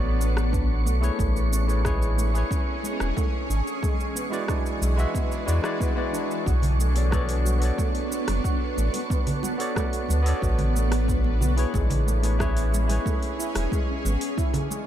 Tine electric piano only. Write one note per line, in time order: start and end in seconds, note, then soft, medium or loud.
0.00 0.97 B3 medium
0.00 0.98 F#4 medium
0.00 0.98 A4 medium
0.00 0.99 C#5 medium
0.00 1.00 D5 loud
1.01 1.64 A3 medium
1.01 1.64 E4 medium
1.01 1.64 G#4 medium
1.01 1.65 B4 medium
1.01 1.65 C#5 loud
1.67 1.80 A3 medium
1.67 1.81 E4 medium
1.67 1.81 G#4 medium
1.67 1.81 B4 medium
1.67 1.82 C#5 medium
1.84 2.30 E4 medium
1.84 2.31 G#4 medium
1.84 2.31 B4 medium
1.84 2.31 C#5 loud
2.33 3.47 E4 medium
2.33 3.48 G#4 medium
2.33 3.49 B4 medium
2.38 3.50 C#5 medium
4.30 4.44 G#3 medium
4.30 4.44 E4 medium
4.30 4.45 F#4 medium
4.30 4.45 B4 medium
4.30 4.45 D5 loud
4.47 4.93 G#3 medium
4.47 4.94 E4 medium
4.47 4.94 F#4 medium
4.47 4.95 B4 medium
4.47 4.95 D5 medium
4.96 5.43 G#3 loud
4.96 5.44 E4 medium
4.96 5.44 F#4 medium
4.96 5.45 B4 medium
4.96 5.45 E5 loud
5.46 5.59 G#3 medium
5.46 5.60 E4 medium
5.46 5.60 F#4 medium
5.46 5.61 B4 medium
5.46 5.61 D5 loud
5.62 5.92 G#3 medium
5.62 5.92 E4 medium
5.62 5.93 F#4 medium
5.62 5.93 B4 medium
5.62 5.94 D5 loud
5.95 6.43 G#3 medium
5.95 6.44 E4 medium
5.95 6.44 F#4 medium
5.95 6.45 B4 medium
5.95 6.45 D5 loud
6.94 7.08 B3 medium
6.94 7.08 F#4 medium
6.94 7.09 A4 medium
6.94 7.09 C#5 medium
6.94 7.09 D5 medium
7.10 7.57 B3 loud
7.10 7.57 F#4 medium
7.10 7.58 A4 medium
7.10 7.58 C#5 medium
7.10 7.59 D5 loud
7.59 9.54 B3 medium
7.59 9.55 F#4 medium
7.59 9.56 A4 medium
7.64 9.57 C#5 medium
7.64 9.57 D5 loud
9.58 9.71 B3 medium
9.58 9.72 F#4 medium
9.58 9.72 A4 medium
9.58 9.73 C#5 medium
9.58 9.73 D5 loud
9.75 10.21 B3 medium
9.75 10.21 F#4 medium
9.75 10.22 A4 medium
9.75 10.22 C#5 medium
9.75 10.23 D5 medium
10.22 11.52 B3 loud
10.22 11.53 F#4 medium
10.22 11.54 A4 medium
10.28 11.55 C#5 medium
10.28 11.55 D5 loud
11.57 12.19 E4 medium
11.57 12.19 G#4 medium
11.57 12.20 B4 medium
11.57 12.20 C#5 loud
12.22 12.35 A3 medium
12.22 12.36 E4 medium
12.22 12.36 G#4 medium
12.22 12.36 B4 medium
12.22 12.37 C#5 medium
12.39 12.85 E4 loud
12.39 12.85 G#4 medium
12.39 12.86 B4 medium
12.39 12.86 C#5 loud
12.87 14.02 E4 medium
12.87 14.03 G#4 medium
12.87 14.03 B4 medium
12.92 14.04 C#5 medium